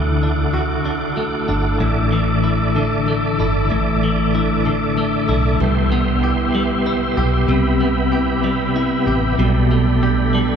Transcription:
Already playing: fingered electric bass D2, clean electric guitar D3 A3 D4, steel-string acoustic guitar E3 A3 D4, tonewheel organ E4 A4 F#5 D6
0.22 steel-string acoustic guitar D4, clean electric guitar D4
0.53 steel-string acoustic guitar F#4, clean electric guitar F#4
0.85 steel-string acoustic guitar D4, clean electric guitar D4
1.16 clean electric guitar A3, steel-string acoustic guitar F#4
1.48 fingered electric bass G1, steel-string acoustic guitar D4, clean electric guitar D4
1.80 fingered electric bass A1, clean electric guitar A2, steel-string acoustic guitar E3, tonewheel organ A4 D5 E5 D6
2.12 clean electric guitar E3, steel-string acoustic guitar A3
2.43 steel-string acoustic guitar D4, clean electric guitar E4
2.75 clean electric guitar D3, steel-string acoustic guitar A4
3.06 steel-string acoustic guitar A3, clean electric guitar A3
3.39 fingered electric bass G1, clean electric guitar E4, steel-string acoustic guitar A4
3.70 fingered electric bass A1, clean electric guitar A2, steel-string acoustic guitar E3
4.02 clean electric guitar E3, steel-string acoustic guitar A3
4.34 steel-string acoustic guitar D4, clean electric guitar E4
4.65 clean electric guitar D3, steel-string acoustic guitar A4
4.97 steel-string acoustic guitar A3, clean electric guitar A3
5.28 fingered electric bass B1, clean electric guitar E4, steel-string acoustic guitar A4
5.60 fingered electric bass C2, steel-string acoustic guitar G3, tonewheel organ B3 G5 C6
5.91 steel-string acoustic guitar B3, clean electric guitar B3
6.23 steel-string acoustic guitar E4, clean electric guitar G4
6.54 clean electric guitar G3, steel-string acoustic guitar G4
6.86 steel-string acoustic guitar B3, clean electric guitar E4
7.17 fingered electric bass B1, steel-string acoustic guitar G4, clean electric guitar G4
7.48 fingered electric bass C2, clean electric guitar C3, steel-string acoustic guitar G3, tonewheel organ B5
7.80 steel-string acoustic guitar B3, clean electric guitar B3
8.12 steel-string acoustic guitar E4, clean electric guitar G4
8.44 clean electric guitar G3, steel-string acoustic guitar G4
8.76 steel-string acoustic guitar B3, clean electric guitar E4
9.07 fingered electric bass A1, clean electric guitar G4, steel-string acoustic guitar G4
9.39 fingered electric bass B1, clean electric guitar B2, steel-string acoustic guitar G3, tonewheel organ A4 D5
9.71 clean electric guitar A3, steel-string acoustic guitar B3
10.02 steel-string acoustic guitar D4, clean electric guitar G4
10.34 clean electric guitar G3, steel-string acoustic guitar A4

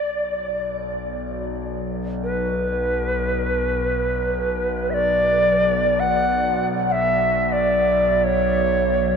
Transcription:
Already playing: synth drone B1, native american-style wooden flute D5
2.23 native american-style wooden flute B4
4.90 native american-style wooden flute D5 E5
6.00 native american-style wooden flute F#5
6.89 native american-style wooden flute E5 F#5
7.52 native american-style wooden flute D5
8.24 native american-style wooden flute C#5

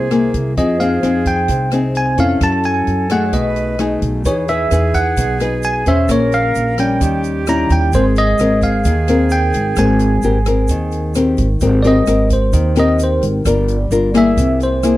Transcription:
Already playing: upright bass C2, nylon-string guitar C3, flute G#4, tine electric piano C5
0.11 nylon-string guitar A#3 E4 G#4, cross-stick, closed hi-hat
0.34 upright bass C2, kick, closed hi-hat
0.57 upright bass F2, nylon-string guitar F3 C4 D#4 G#4, flute G#4, tine electric piano D#5, kick, closed hi-hat
0.80 nylon-string guitar C4 D#4 G#4, tine electric piano F5, closed hi-hat
1.03 upright bass F2, nylon-string guitar C4 D#4 G#4, cross-stick, closed hi-hat
1.26 tine electric piano G5, kick, closed hi-hat
1.48 upright bass C2, nylon-string guitar C3, kick, closed hi-hat
1.71 nylon-string guitar C4 D#4 G#4, cross-stick, closed hi-hat
1.95 tine electric piano G#5, closed hi-hat
2.17 upright bass F2, nylon-string guitar C#4 E4 A4, tine electric piano F5, closed hi-hat
2.41 upright bass F#2, nylon-string guitar F#3, flute A4, tine electric piano A5, kick, cross-stick, closed hi-hat
2.63 tine electric piano G#5, closed hi-hat
2.87 upright bass F#2, closed hi-hat
3.10 nylon-string guitar A3 D#4 G#4, tine electric piano F#5, cross-stick, closed hi-hat
3.26 flute C#5
3.33 upright bass B1, nylon-string guitar B2, flute B4, tine electric piano D#5, kick, closed hi-hat
3.56 closed hi-hat
3.79 nylon-string guitar A3 D#4 G#4, cross-stick, closed hi-hat
4.02 upright bass B1, kick, closed hi-hat
4.24 upright bass E2, nylon-string guitar E3 D#4 G#4 B4, flute G#4, tine electric piano C#5, kick, closed hi-hat, shaker
4.48 nylon-string guitar D#4 G#4 B4, tine electric piano E5, closed hi-hat, shaker
4.71 upright bass E2, nylon-string guitar D#4 G#4 B4, cross-stick, closed hi-hat, shaker
4.94 tine electric piano F#5, kick, closed hi-hat, shaker
5.17 upright bass B1, nylon-string guitar B2, kick, closed hi-hat, shaker
5.40 nylon-string guitar D#4 G#4 B4, cross-stick, closed hi-hat, shaker
5.63 tine electric piano G#5, closed hi-hat, shaker
5.86 upright bass E2, nylon-string guitar C#4 G#4 C5, tine electric piano E5, closed hi-hat, shaker
6.09 upright bass A#1, nylon-string guitar A#3, flute A#4, tine electric piano C#5, kick, cross-stick, closed hi-hat, shaker
6.32 tine electric piano F5, closed hi-hat, shaker
6.55 upright bass A#1, closed hi-hat, shaker
6.78 nylon-string guitar G3 C#4, tine electric piano G5, cross-stick, closed hi-hat, shaker
7.01 upright bass D#2, nylon-string guitar D#3, flute G4, kick, closed hi-hat, shaker
7.24 closed hi-hat, shaker
7.47 nylon-string guitar G3 C#4 E4, tine electric piano A#5, cross-stick, closed hi-hat, shaker
7.70 upright bass D#2, tine electric piano G5, kick, closed hi-hat, shaker
7.93 upright bass G#1, nylon-string guitar G#3 C4 A#4, flute G#4, tine electric piano C5, kick, closed hi-hat, shaker
8.16 tine electric piano D#5, closed hi-hat, shaker
8.38 upright bass G#1, nylon-string guitar C4 A#4, cross-stick, closed hi-hat, shaker
8.61 tine electric piano F5, kick, closed hi-hat, shaker
8.84 upright bass D#2, nylon-string guitar D#3, kick, closed hi-hat, shaker
9.07 nylon-string guitar C4 A#4, cross-stick, closed hi-hat, shaker
9.30 tine electric piano G5, closed hi-hat, shaker
9.53 upright bass G#1, closed hi-hat, shaker
9.76 upright bass G#1, nylon-string guitar G#3 C4 A#4, tine electric piano G#5, kick, cross-stick, closed hi-hat, shaker
9.99 closed hi-hat, shaker
10.22 upright bass G#1, nylon-string guitar C4 G4 A#4, closed hi-hat, shaker
10.45 nylon-string guitar C4 A#4, cross-stick, closed hi-hat, shaker
10.68 upright bass D#2, nylon-string guitar D#3, kick, closed hi-hat, shaker
10.91 closed hi-hat, shaker
11.15 nylon-string guitar C4 G4 A#4, cross-stick, closed hi-hat, shaker
11.37 upright bass G#1, kick, closed hi-hat, shaker
11.60 upright bass G#1, nylon-string guitar G#3 C4 G4 A#4, kick, closed hi-hat, shaker
11.83 nylon-string guitar C4 G4 A#4, tine electric piano D5, closed hi-hat, shaker
11.87 tine electric piano D#5
12.07 upright bass G#1, nylon-string guitar C4 G4 A#4, cross-stick, closed hi-hat, shaker
12.30 tine electric piano C5, kick, closed hi-hat, shaker
12.53 upright bass D#2, nylon-string guitar D#3, kick, closed hi-hat, shaker
12.76 nylon-string guitar C4 G4 A#4, tine electric piano D#5, cross-stick, closed hi-hat, shaker
12.99 closed hi-hat, shaker
13.04 tine electric piano C5
13.22 upright bass G#1, closed hi-hat, shaker
13.45 upright bass G1, nylon-string guitar G3 D4 F4 A#4, kick, cross-stick, closed hi-hat, shaker
13.68 closed hi-hat, shaker
13.91 upright bass G1, nylon-string guitar D4 F4 A#4, closed hi-hat, shaker
14.14 nylon-string guitar A#3 E4 G#4, tine electric piano E5, cross-stick, closed hi-hat, shaker
14.37 upright bass C2, nylon-string guitar C3, kick, closed hi-hat, shaker
14.60 tine electric piano C5, closed hi-hat, shaker
14.83 nylon-string guitar A#3 E4 G#4, cross-stick, closed hi-hat, shaker

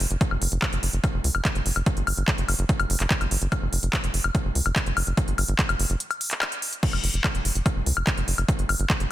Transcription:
0.00 analog synth bass F#1, open hi-hat
0.11 analog synth bass F#1, closed hi-hat
0.21 kick, closed hi-hat
0.31 analog synth bass F#1, high woodblock
0.42 analog synth bass F#1, open hi-hat
0.52 analog synth bass F#1, closed hi-hat
0.62 kick, clap, closed hi-hat, high woodblock
0.73 analog synth bass F#1, closed hi-hat
0.83 analog synth bass F#1, open hi-hat
0.93 analog synth bass F#1, closed hi-hat
1.04 kick, closed hi-hat, high woodblock
1.14 analog synth bass F#1
1.24 analog synth bass C#2, open hi-hat
1.35 analog synth bass F#1, closed hi-hat, high woodblock
1.45 kick, clap, closed hi-hat
1.55 analog synth bass F#1, closed hi-hat
1.66 analog synth bass F#1, open hi-hat
1.76 analog synth bass F#1, closed hi-hat, high woodblock
1.86 kick, closed hi-hat
1.97 analog synth bass G1, closed hi-hat
2.07 analog synth bass G1, open hi-hat, high woodblock
2.17 analog synth bass G1, closed hi-hat
2.28 kick, clap, closed hi-hat
2.38 analog synth bass F#1, closed hi-hat
2.48 analog synth bass F#1, open hi-hat, high woodblock
2.59 analog synth bass F#1, closed hi-hat
2.69 kick, closed hi-hat
2.80 analog synth bass F#1, closed hi-hat, high woodblock
2.90 analog synth bass F#1, open hi-hat
3.00 analog synth bass F#1, clap, closed hi-hat
3.11 kick, clap, closed hi-hat
3.21 analog synth bass G1, closed hi-hat, high woodblock
3.31 analog synth bass G1, open hi-hat
3.42 analog synth bass G1, closed hi-hat
3.52 kick, closed hi-hat, high woodblock
3.62 analog synth bass F#1
3.73 analog synth bass F#1, open hi-hat
3.83 analog synth bass F#1, closed hi-hat
3.93 kick, clap, closed hi-hat, high woodblock
4.04 analog synth bass F#1, closed hi-hat
4.14 analog synth bass F#1, open hi-hat
4.24 analog synth bass F#1, closed hi-hat, high woodblock
4.35 kick, closed hi-hat
4.45 analog synth bass F#1
4.55 analog synth bass C#2, open hi-hat
4.66 analog synth bass F#1, closed hi-hat, high woodblock
4.76 kick, clap, closed hi-hat
4.86 analog synth bass F#1, closed hi-hat
4.97 analog synth bass F#1, open hi-hat, high woodblock
5.07 analog synth bass F#1, closed hi-hat
5.17 kick, closed hi-hat
5.28 analog synth bass G1, closed hi-hat
5.38 analog synth bass G1, open hi-hat, high woodblock
5.48 analog synth bass G1, closed hi-hat
5.59 kick, clap, closed hi-hat
5.69 analog synth bass F#1, closed hi-hat, high woodblock
5.79 analog synth bass F#1, open hi-hat
5.90 analog synth bass F#1, closed hi-hat
6.00 closed hi-hat
6.11 closed hi-hat, high woodblock
6.21 open hi-hat
6.31 clap, closed hi-hat
6.42 clap, closed hi-hat, high woodblock
6.52 closed hi-hat
6.62 open hi-hat
6.73 closed hi-hat
6.83 kick, closed hi-hat, crash
6.93 analog synth bass F#1, high woodblock
7.04 analog synth bass F#1, open hi-hat
7.14 analog synth bass F#1, closed hi-hat
7.24 kick, clap, closed hi-hat, high woodblock
7.35 analog synth bass F#1, closed hi-hat
7.45 analog synth bass F#1, open hi-hat
7.55 analog synth bass F#1, closed hi-hat
7.66 kick, closed hi-hat, high woodblock
7.76 analog synth bass F#1
7.86 analog synth bass C#2, open hi-hat
7.97 analog synth bass F#1, closed hi-hat, high woodblock
8.07 kick, clap, closed hi-hat
8.17 analog synth bass F#1, closed hi-hat
8.28 analog synth bass F#1, open hi-hat
8.38 analog synth bass F#1, closed hi-hat, high woodblock
8.48 kick, closed hi-hat
8.59 analog synth bass G1, closed hi-hat
8.69 analog synth bass G1, open hi-hat, high woodblock
8.80 analog synth bass G1, closed hi-hat
8.90 kick, clap, closed hi-hat
9.00 analog synth bass F#1, closed hi-hat

